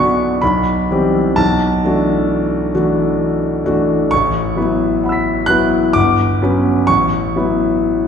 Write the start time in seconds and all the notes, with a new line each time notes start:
Already playing: B1 D3 B3 D4 F#4 D5 G#5 B5 C#6 D6 F#6
0.42 B1 B5
0.91 E3 G3 C4 G4
1.36 B1 A5
1.84 E3 A3 D4 F#4
2.74 E3 A3 D4 F#4
3.65 E3 A3 D4 F#4
4.11 A1 C#6
4.56 F#3 B3 E4 B4
5.03 F#5 B5
5.09 E6 B6
5.46 F#3 B3 E4 B4 F#6
5.93 G1 D6
6.42 F#3 B3 C#4 B4
6.87 A1 C#6
7.36 F#3 B3 E4 B4